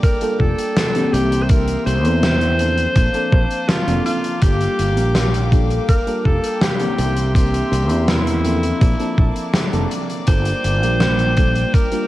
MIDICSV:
0, 0, Header, 1, 6, 480
1, 0, Start_track
1, 0, Tempo, 731707
1, 981, Time_signature, 4, 2, 24, 8
1, 7920, End_track
2, 0, Start_track
2, 0, Title_t, "String section"
2, 0, Program_c, 0, 48
2, 0, Note_on_c, 0, 58, 83
2, 0, Note_on_c, 0, 74, 79
2, 0, Note_on_c, 0, 79, 71
2, 0, Note_on_c, 0, 86, 95
2, 715, Note_off_c, 0, 58, 0
2, 715, Note_off_c, 0, 74, 0
2, 716, Note_off_c, 0, 86, 0
2, 739, Note_on_c, 0, 84, 97
2, 740, Note_on_c, 0, 76, 83
2, 742, Note_on_c, 0, 58, 85
2, 1915, Note_off_c, 0, 79, 0
2, 1928, Note_off_c, 0, 84, 0
2, 1929, Note_off_c, 0, 76, 0
2, 1930, Note_off_c, 0, 58, 0
2, 1939, Note_on_c, 0, 81, 79
2, 1940, Note_on_c, 0, 58, 91
2, 1940, Note_on_c, 0, 77, 81
2, 1940, Note_on_c, 0, 86, 95
2, 2891, Note_off_c, 0, 81, 0
2, 2901, Note_on_c, 0, 79, 72
2, 4554, Note_off_c, 0, 77, 0
2, 4554, Note_off_c, 0, 86, 0
2, 4582, Note_on_c, 0, 76, 76
2, 4582, Note_on_c, 0, 84, 98
2, 5755, Note_off_c, 0, 79, 0
2, 5770, Note_off_c, 0, 76, 0
2, 5770, Note_off_c, 0, 84, 0
2, 5783, Note_on_c, 0, 81, 81
2, 5783, Note_on_c, 0, 86, 95
2, 5784, Note_on_c, 0, 74, 81
2, 6733, Note_off_c, 0, 81, 0
2, 6742, Note_on_c, 0, 79, 77
2, 7920, Note_off_c, 0, 58, 0
2, 7920, Note_off_c, 0, 74, 0
2, 7920, Note_off_c, 0, 79, 0
2, 7920, Note_off_c, 0, 86, 0
2, 7920, End_track
3, 0, Start_track
3, 0, Title_t, "Alto saxophone"
3, 0, Program_c, 1, 65
3, 22, Note_on_c, 1, 70, 105
3, 262, Note_on_c, 1, 69, 112
3, 272, Note_off_c, 1, 70, 0
3, 742, Note_on_c, 1, 67, 102
3, 752, Note_off_c, 1, 69, 0
3, 935, Note_on_c, 1, 72, 82
3, 945, Note_off_c, 1, 67, 0
3, 981, Note_on_c, 1, 70, 108
3, 990, Note_off_c, 1, 72, 0
3, 1217, Note_off_c, 1, 70, 0
3, 1220, Note_on_c, 1, 72, 127
3, 2420, Note_on_c, 1, 65, 103
3, 2430, Note_off_c, 1, 72, 0
3, 2659, Note_off_c, 1, 65, 0
3, 2663, Note_on_c, 1, 65, 98
3, 2900, Note_on_c, 1, 67, 110
3, 2910, Note_off_c, 1, 65, 0
3, 3684, Note_off_c, 1, 67, 0
3, 3862, Note_on_c, 1, 70, 99
3, 4101, Note_on_c, 1, 69, 95
3, 4111, Note_off_c, 1, 70, 0
3, 4342, Note_on_c, 1, 67, 107
3, 4352, Note_off_c, 1, 69, 0
3, 4818, Note_off_c, 1, 67, 0
3, 4822, Note_on_c, 1, 67, 102
3, 5304, Note_on_c, 1, 64, 89
3, 5313, Note_off_c, 1, 67, 0
3, 6503, Note_off_c, 1, 64, 0
3, 6741, Note_on_c, 1, 72, 124
3, 7703, Note_on_c, 1, 70, 112
3, 7713, Note_off_c, 1, 72, 0
3, 7920, Note_off_c, 1, 70, 0
3, 7920, End_track
4, 0, Start_track
4, 0, Title_t, "FM electric piano"
4, 0, Program_c, 2, 5
4, 0, Note_on_c, 2, 55, 105
4, 0, Note_on_c, 2, 58, 91
4, 0, Note_on_c, 2, 62, 91
4, 0, Note_on_c, 2, 65, 91
4, 0, Note_on_c, 2, 69, 107
4, 111, Note_off_c, 2, 55, 0
4, 112, Note_off_c, 2, 58, 0
4, 113, Note_off_c, 2, 62, 0
4, 114, Note_off_c, 2, 65, 0
4, 115, Note_off_c, 2, 69, 0
4, 138, Note_on_c, 2, 55, 107
4, 141, Note_on_c, 2, 58, 97
4, 143, Note_on_c, 2, 62, 97
4, 146, Note_on_c, 2, 65, 99
4, 148, Note_on_c, 2, 69, 117
4, 591, Note_off_c, 2, 55, 0
4, 592, Note_off_c, 2, 58, 0
4, 594, Note_off_c, 2, 62, 0
4, 595, Note_off_c, 2, 65, 0
4, 596, Note_off_c, 2, 69, 0
4, 619, Note_on_c, 2, 52, 108
4, 620, Note_on_c, 2, 58, 91
4, 623, Note_on_c, 2, 60, 98
4, 626, Note_on_c, 2, 62, 94
4, 627, Note_on_c, 2, 67, 111
4, 951, Note_off_c, 2, 52, 0
4, 952, Note_off_c, 2, 58, 0
4, 953, Note_off_c, 2, 60, 0
4, 955, Note_off_c, 2, 62, 0
4, 956, Note_off_c, 2, 67, 0
4, 978, Note_on_c, 2, 52, 86
4, 980, Note_on_c, 2, 58, 83
4, 983, Note_on_c, 2, 60, 78
4, 985, Note_on_c, 2, 62, 83
4, 988, Note_on_c, 2, 67, 101
4, 1311, Note_off_c, 2, 52, 0
4, 1312, Note_off_c, 2, 58, 0
4, 1313, Note_off_c, 2, 60, 0
4, 1314, Note_off_c, 2, 62, 0
4, 1316, Note_off_c, 2, 67, 0
4, 1338, Note_on_c, 2, 52, 99
4, 1340, Note_on_c, 2, 58, 85
4, 1343, Note_on_c, 2, 60, 87
4, 1345, Note_on_c, 2, 62, 87
4, 1348, Note_on_c, 2, 69, 100
4, 1671, Note_off_c, 2, 52, 0
4, 1672, Note_off_c, 2, 58, 0
4, 1673, Note_off_c, 2, 60, 0
4, 1674, Note_off_c, 2, 62, 0
4, 1676, Note_off_c, 2, 69, 0
4, 1698, Note_on_c, 2, 53, 100
4, 1700, Note_on_c, 2, 58, 94
4, 1702, Note_on_c, 2, 60, 96
4, 1704, Note_on_c, 2, 62, 93
4, 1706, Note_on_c, 2, 69, 109
4, 2031, Note_off_c, 2, 53, 0
4, 2032, Note_off_c, 2, 58, 0
4, 2033, Note_off_c, 2, 60, 0
4, 2034, Note_off_c, 2, 62, 0
4, 2035, Note_off_c, 2, 69, 0
4, 2057, Note_on_c, 2, 53, 101
4, 2058, Note_on_c, 2, 58, 100
4, 2061, Note_on_c, 2, 60, 96
4, 2063, Note_on_c, 2, 62, 94
4, 2066, Note_on_c, 2, 69, 120
4, 2510, Note_off_c, 2, 53, 0
4, 2511, Note_off_c, 2, 58, 0
4, 2512, Note_off_c, 2, 60, 0
4, 2514, Note_off_c, 2, 62, 0
4, 2515, Note_off_c, 2, 69, 0
4, 2536, Note_on_c, 2, 53, 106
4, 2537, Note_on_c, 2, 58, 91
4, 2540, Note_on_c, 2, 60, 93
4, 2543, Note_on_c, 2, 62, 93
4, 2545, Note_on_c, 2, 69, 108
4, 2870, Note_off_c, 2, 53, 0
4, 2871, Note_off_c, 2, 58, 0
4, 2872, Note_off_c, 2, 60, 0
4, 2874, Note_off_c, 2, 62, 0
4, 2875, Note_off_c, 2, 69, 0
4, 2897, Note_on_c, 2, 55, 83
4, 2899, Note_on_c, 2, 58, 79
4, 2901, Note_on_c, 2, 62, 79
4, 2904, Note_on_c, 2, 65, 78
4, 2906, Note_on_c, 2, 69, 100
4, 3230, Note_off_c, 2, 55, 0
4, 3231, Note_off_c, 2, 58, 0
4, 3233, Note_off_c, 2, 62, 0
4, 3234, Note_off_c, 2, 65, 0
4, 3235, Note_off_c, 2, 69, 0
4, 3255, Note_on_c, 2, 55, 96
4, 3258, Note_on_c, 2, 58, 87
4, 3260, Note_on_c, 2, 62, 88
4, 3262, Note_on_c, 2, 65, 83
4, 3264, Note_on_c, 2, 70, 102
4, 3590, Note_off_c, 2, 55, 0
4, 3591, Note_off_c, 2, 58, 0
4, 3592, Note_off_c, 2, 62, 0
4, 3593, Note_off_c, 2, 65, 0
4, 3594, Note_off_c, 2, 70, 0
4, 3616, Note_on_c, 2, 55, 96
4, 3618, Note_on_c, 2, 58, 91
4, 3620, Note_on_c, 2, 62, 90
4, 3624, Note_on_c, 2, 65, 88
4, 3626, Note_on_c, 2, 69, 115
4, 3950, Note_off_c, 2, 55, 0
4, 3951, Note_off_c, 2, 58, 0
4, 3952, Note_off_c, 2, 62, 0
4, 3954, Note_off_c, 2, 65, 0
4, 3955, Note_off_c, 2, 69, 0
4, 3976, Note_on_c, 2, 55, 107
4, 3979, Note_on_c, 2, 58, 94
4, 3981, Note_on_c, 2, 62, 95
4, 3983, Note_on_c, 2, 65, 101
4, 3986, Note_on_c, 2, 69, 117
4, 4430, Note_off_c, 2, 55, 0
4, 4431, Note_off_c, 2, 58, 0
4, 4433, Note_off_c, 2, 62, 0
4, 4434, Note_off_c, 2, 65, 0
4, 4435, Note_off_c, 2, 69, 0
4, 4457, Note_on_c, 2, 52, 103
4, 4459, Note_on_c, 2, 58, 97
4, 4462, Note_on_c, 2, 60, 95
4, 4464, Note_on_c, 2, 62, 91
4, 4466, Note_on_c, 2, 67, 116
4, 4790, Note_off_c, 2, 52, 0
4, 4791, Note_off_c, 2, 58, 0
4, 4793, Note_off_c, 2, 60, 0
4, 4794, Note_off_c, 2, 62, 0
4, 4795, Note_off_c, 2, 67, 0
4, 4815, Note_on_c, 2, 52, 90
4, 4818, Note_on_c, 2, 58, 83
4, 4821, Note_on_c, 2, 60, 78
4, 4823, Note_on_c, 2, 62, 79
4, 4826, Note_on_c, 2, 67, 97
4, 5149, Note_off_c, 2, 52, 0
4, 5151, Note_off_c, 2, 58, 0
4, 5153, Note_off_c, 2, 60, 0
4, 5154, Note_off_c, 2, 62, 0
4, 5155, Note_off_c, 2, 67, 0
4, 5177, Note_on_c, 2, 52, 95
4, 5179, Note_on_c, 2, 58, 86
4, 5181, Note_on_c, 2, 60, 82
4, 5184, Note_on_c, 2, 62, 85
4, 5186, Note_on_c, 2, 69, 104
4, 5510, Note_off_c, 2, 52, 0
4, 5511, Note_off_c, 2, 58, 0
4, 5512, Note_off_c, 2, 60, 0
4, 5514, Note_off_c, 2, 62, 0
4, 5515, Note_off_c, 2, 69, 0
4, 5537, Note_on_c, 2, 53, 102
4, 5539, Note_on_c, 2, 58, 92
4, 5542, Note_on_c, 2, 60, 94
4, 5545, Note_on_c, 2, 62, 90
4, 5547, Note_on_c, 2, 69, 107
4, 5870, Note_off_c, 2, 53, 0
4, 5872, Note_off_c, 2, 58, 0
4, 5873, Note_off_c, 2, 60, 0
4, 5874, Note_off_c, 2, 62, 0
4, 5875, Note_off_c, 2, 69, 0
4, 5896, Note_on_c, 2, 53, 107
4, 5899, Note_on_c, 2, 58, 96
4, 5900, Note_on_c, 2, 60, 95
4, 5903, Note_on_c, 2, 62, 95
4, 5906, Note_on_c, 2, 69, 115
4, 6350, Note_off_c, 2, 53, 0
4, 6351, Note_off_c, 2, 58, 0
4, 6352, Note_off_c, 2, 60, 0
4, 6353, Note_off_c, 2, 62, 0
4, 6355, Note_off_c, 2, 69, 0
4, 6376, Note_on_c, 2, 53, 104
4, 6380, Note_on_c, 2, 58, 96
4, 6382, Note_on_c, 2, 60, 97
4, 6384, Note_on_c, 2, 62, 98
4, 6387, Note_on_c, 2, 69, 118
4, 6710, Note_off_c, 2, 53, 0
4, 6712, Note_off_c, 2, 58, 0
4, 6713, Note_off_c, 2, 60, 0
4, 6714, Note_off_c, 2, 62, 0
4, 6715, Note_off_c, 2, 69, 0
4, 6737, Note_on_c, 2, 55, 86
4, 6738, Note_on_c, 2, 58, 85
4, 6741, Note_on_c, 2, 62, 81
4, 6743, Note_on_c, 2, 65, 79
4, 6746, Note_on_c, 2, 69, 93
4, 7070, Note_off_c, 2, 55, 0
4, 7071, Note_off_c, 2, 58, 0
4, 7073, Note_off_c, 2, 62, 0
4, 7073, Note_off_c, 2, 65, 0
4, 7075, Note_off_c, 2, 69, 0
4, 7097, Note_on_c, 2, 55, 96
4, 7100, Note_on_c, 2, 58, 88
4, 7101, Note_on_c, 2, 62, 85
4, 7105, Note_on_c, 2, 65, 85
4, 7107, Note_on_c, 2, 70, 106
4, 7430, Note_off_c, 2, 55, 0
4, 7432, Note_off_c, 2, 58, 0
4, 7433, Note_off_c, 2, 62, 0
4, 7434, Note_off_c, 2, 65, 0
4, 7436, Note_off_c, 2, 70, 0
4, 7456, Note_on_c, 2, 55, 98
4, 7459, Note_on_c, 2, 58, 96
4, 7461, Note_on_c, 2, 62, 88
4, 7464, Note_on_c, 2, 65, 87
4, 7466, Note_on_c, 2, 69, 105
4, 7790, Note_off_c, 2, 55, 0
4, 7792, Note_off_c, 2, 58, 0
4, 7792, Note_off_c, 2, 62, 0
4, 7794, Note_off_c, 2, 65, 0
4, 7795, Note_off_c, 2, 69, 0
4, 7815, Note_on_c, 2, 55, 107
4, 7817, Note_on_c, 2, 58, 97
4, 7820, Note_on_c, 2, 62, 95
4, 7822, Note_on_c, 2, 65, 101
4, 7825, Note_on_c, 2, 70, 120
4, 7920, Note_off_c, 2, 55, 0
4, 7920, Note_off_c, 2, 58, 0
4, 7920, Note_off_c, 2, 62, 0
4, 7920, Note_off_c, 2, 65, 0
4, 7920, Note_off_c, 2, 70, 0
4, 7920, End_track
5, 0, Start_track
5, 0, Title_t, "Fretless electric bass"
5, 0, Program_c, 3, 35
5, 262, Note_on_c, 3, 29, 83
5, 339, Note_off_c, 3, 29, 0
5, 741, Note_on_c, 3, 36, 94
5, 1152, Note_off_c, 3, 36, 0
5, 1221, Note_on_c, 3, 36, 97
5, 1341, Note_off_c, 3, 36, 0
5, 1341, Note_on_c, 3, 40, 99
5, 1872, Note_off_c, 3, 40, 0
5, 1942, Note_on_c, 3, 34, 93
5, 2019, Note_off_c, 3, 34, 0
5, 2181, Note_on_c, 3, 34, 97
5, 2258, Note_off_c, 3, 34, 0
5, 2541, Note_on_c, 3, 29, 80
5, 2618, Note_off_c, 3, 29, 0
5, 2902, Note_on_c, 3, 31, 101
5, 3056, Note_off_c, 3, 31, 0
5, 3142, Note_on_c, 3, 31, 92
5, 3261, Note_off_c, 3, 31, 0
5, 3261, Note_on_c, 3, 34, 110
5, 3793, Note_off_c, 3, 34, 0
5, 4102, Note_on_c, 3, 29, 80
5, 4179, Note_off_c, 3, 29, 0
5, 4582, Note_on_c, 3, 36, 93
5, 4993, Note_off_c, 3, 36, 0
5, 5062, Note_on_c, 3, 36, 93
5, 5183, Note_off_c, 3, 36, 0
5, 5183, Note_on_c, 3, 40, 107
5, 5713, Note_off_c, 3, 40, 0
5, 5781, Note_on_c, 3, 34, 96
5, 5858, Note_off_c, 3, 34, 0
5, 6022, Note_on_c, 3, 34, 91
5, 6099, Note_off_c, 3, 34, 0
5, 6382, Note_on_c, 3, 29, 83
5, 6459, Note_off_c, 3, 29, 0
5, 6742, Note_on_c, 3, 31, 106
5, 6896, Note_off_c, 3, 31, 0
5, 6981, Note_on_c, 3, 31, 96
5, 7101, Note_off_c, 3, 31, 0
5, 7101, Note_on_c, 3, 34, 102
5, 7633, Note_off_c, 3, 34, 0
5, 7920, End_track
6, 0, Start_track
6, 0, Title_t, "Drums"
6, 22, Note_on_c, 9, 36, 127
6, 24, Note_on_c, 9, 42, 93
6, 87, Note_off_c, 9, 36, 0
6, 90, Note_off_c, 9, 42, 0
6, 138, Note_on_c, 9, 42, 57
6, 203, Note_off_c, 9, 42, 0
6, 261, Note_on_c, 9, 36, 66
6, 327, Note_off_c, 9, 36, 0
6, 383, Note_on_c, 9, 42, 61
6, 449, Note_off_c, 9, 42, 0
6, 502, Note_on_c, 9, 38, 127
6, 502, Note_on_c, 9, 42, 103
6, 568, Note_off_c, 9, 38, 0
6, 568, Note_off_c, 9, 42, 0
6, 622, Note_on_c, 9, 42, 53
6, 687, Note_off_c, 9, 42, 0
6, 747, Note_on_c, 9, 42, 76
6, 813, Note_off_c, 9, 42, 0
6, 866, Note_on_c, 9, 42, 56
6, 932, Note_off_c, 9, 42, 0
6, 977, Note_on_c, 9, 42, 101
6, 981, Note_on_c, 9, 36, 124
6, 1043, Note_off_c, 9, 42, 0
6, 1046, Note_off_c, 9, 36, 0
6, 1099, Note_on_c, 9, 42, 62
6, 1165, Note_off_c, 9, 42, 0
6, 1226, Note_on_c, 9, 42, 78
6, 1291, Note_off_c, 9, 42, 0
6, 1343, Note_on_c, 9, 42, 53
6, 1409, Note_off_c, 9, 42, 0
6, 1462, Note_on_c, 9, 42, 99
6, 1464, Note_on_c, 9, 38, 116
6, 1528, Note_off_c, 9, 42, 0
6, 1530, Note_off_c, 9, 38, 0
6, 1582, Note_on_c, 9, 42, 54
6, 1647, Note_off_c, 9, 42, 0
6, 1700, Note_on_c, 9, 42, 82
6, 1766, Note_off_c, 9, 42, 0
6, 1821, Note_on_c, 9, 42, 51
6, 1887, Note_off_c, 9, 42, 0
6, 1940, Note_on_c, 9, 42, 89
6, 1941, Note_on_c, 9, 36, 123
6, 2005, Note_off_c, 9, 42, 0
6, 2007, Note_off_c, 9, 36, 0
6, 2060, Note_on_c, 9, 42, 55
6, 2126, Note_off_c, 9, 42, 0
6, 2181, Note_on_c, 9, 36, 116
6, 2247, Note_off_c, 9, 36, 0
6, 2300, Note_on_c, 9, 42, 55
6, 2365, Note_off_c, 9, 42, 0
6, 2419, Note_on_c, 9, 38, 127
6, 2421, Note_on_c, 9, 42, 101
6, 2485, Note_off_c, 9, 38, 0
6, 2486, Note_off_c, 9, 42, 0
6, 2544, Note_on_c, 9, 42, 54
6, 2610, Note_off_c, 9, 42, 0
6, 2663, Note_on_c, 9, 42, 77
6, 2729, Note_off_c, 9, 42, 0
6, 2782, Note_on_c, 9, 42, 52
6, 2848, Note_off_c, 9, 42, 0
6, 2897, Note_on_c, 9, 42, 105
6, 2902, Note_on_c, 9, 36, 120
6, 2963, Note_off_c, 9, 42, 0
6, 2967, Note_off_c, 9, 36, 0
6, 3022, Note_on_c, 9, 42, 54
6, 3088, Note_off_c, 9, 42, 0
6, 3142, Note_on_c, 9, 42, 73
6, 3207, Note_off_c, 9, 42, 0
6, 3261, Note_on_c, 9, 42, 57
6, 3327, Note_off_c, 9, 42, 0
6, 3378, Note_on_c, 9, 38, 115
6, 3381, Note_on_c, 9, 42, 101
6, 3443, Note_off_c, 9, 38, 0
6, 3447, Note_off_c, 9, 42, 0
6, 3504, Note_on_c, 9, 42, 55
6, 3570, Note_off_c, 9, 42, 0
6, 3622, Note_on_c, 9, 36, 107
6, 3624, Note_on_c, 9, 42, 78
6, 3687, Note_off_c, 9, 36, 0
6, 3689, Note_off_c, 9, 42, 0
6, 3741, Note_on_c, 9, 42, 51
6, 3807, Note_off_c, 9, 42, 0
6, 3861, Note_on_c, 9, 42, 96
6, 3862, Note_on_c, 9, 36, 123
6, 3927, Note_off_c, 9, 42, 0
6, 3928, Note_off_c, 9, 36, 0
6, 3982, Note_on_c, 9, 42, 49
6, 4048, Note_off_c, 9, 42, 0
6, 4102, Note_on_c, 9, 36, 65
6, 4167, Note_off_c, 9, 36, 0
6, 4222, Note_on_c, 9, 42, 57
6, 4288, Note_off_c, 9, 42, 0
6, 4339, Note_on_c, 9, 38, 127
6, 4343, Note_on_c, 9, 42, 105
6, 4405, Note_off_c, 9, 38, 0
6, 4408, Note_off_c, 9, 42, 0
6, 4458, Note_on_c, 9, 42, 55
6, 4523, Note_off_c, 9, 42, 0
6, 4582, Note_on_c, 9, 42, 78
6, 4647, Note_off_c, 9, 42, 0
6, 4700, Note_on_c, 9, 42, 58
6, 4766, Note_off_c, 9, 42, 0
6, 4822, Note_on_c, 9, 36, 110
6, 4827, Note_on_c, 9, 42, 103
6, 4887, Note_off_c, 9, 36, 0
6, 4893, Note_off_c, 9, 42, 0
6, 4947, Note_on_c, 9, 42, 58
6, 5012, Note_off_c, 9, 42, 0
6, 5070, Note_on_c, 9, 42, 80
6, 5136, Note_off_c, 9, 42, 0
6, 5179, Note_on_c, 9, 42, 55
6, 5245, Note_off_c, 9, 42, 0
6, 5301, Note_on_c, 9, 38, 126
6, 5303, Note_on_c, 9, 42, 94
6, 5367, Note_off_c, 9, 38, 0
6, 5368, Note_off_c, 9, 42, 0
6, 5426, Note_on_c, 9, 42, 57
6, 5491, Note_off_c, 9, 42, 0
6, 5540, Note_on_c, 9, 42, 80
6, 5606, Note_off_c, 9, 42, 0
6, 5661, Note_on_c, 9, 42, 53
6, 5727, Note_off_c, 9, 42, 0
6, 5781, Note_on_c, 9, 42, 99
6, 5782, Note_on_c, 9, 36, 125
6, 5847, Note_off_c, 9, 36, 0
6, 5847, Note_off_c, 9, 42, 0
6, 5901, Note_on_c, 9, 42, 48
6, 5967, Note_off_c, 9, 42, 0
6, 6021, Note_on_c, 9, 36, 108
6, 6087, Note_off_c, 9, 36, 0
6, 6139, Note_on_c, 9, 42, 52
6, 6204, Note_off_c, 9, 42, 0
6, 6255, Note_on_c, 9, 38, 127
6, 6263, Note_on_c, 9, 42, 105
6, 6321, Note_off_c, 9, 38, 0
6, 6328, Note_off_c, 9, 42, 0
6, 6383, Note_on_c, 9, 42, 52
6, 6449, Note_off_c, 9, 42, 0
6, 6502, Note_on_c, 9, 42, 74
6, 6567, Note_off_c, 9, 42, 0
6, 6623, Note_on_c, 9, 42, 52
6, 6689, Note_off_c, 9, 42, 0
6, 6736, Note_on_c, 9, 42, 99
6, 6742, Note_on_c, 9, 36, 113
6, 6802, Note_off_c, 9, 42, 0
6, 6807, Note_off_c, 9, 36, 0
6, 6857, Note_on_c, 9, 42, 65
6, 6923, Note_off_c, 9, 42, 0
6, 6982, Note_on_c, 9, 42, 73
6, 7047, Note_off_c, 9, 42, 0
6, 7105, Note_on_c, 9, 42, 52
6, 7170, Note_off_c, 9, 42, 0
6, 7218, Note_on_c, 9, 38, 100
6, 7218, Note_on_c, 9, 42, 102
6, 7283, Note_off_c, 9, 42, 0
6, 7284, Note_off_c, 9, 38, 0
6, 7340, Note_on_c, 9, 42, 47
6, 7405, Note_off_c, 9, 42, 0
6, 7457, Note_on_c, 9, 42, 82
6, 7462, Note_on_c, 9, 36, 99
6, 7523, Note_off_c, 9, 42, 0
6, 7527, Note_off_c, 9, 36, 0
6, 7580, Note_on_c, 9, 42, 50
6, 7646, Note_off_c, 9, 42, 0
6, 7701, Note_on_c, 9, 36, 116
6, 7705, Note_on_c, 9, 42, 90
6, 7767, Note_off_c, 9, 36, 0
6, 7770, Note_off_c, 9, 42, 0
6, 7817, Note_on_c, 9, 42, 52
6, 7883, Note_off_c, 9, 42, 0
6, 7920, End_track
0, 0, End_of_file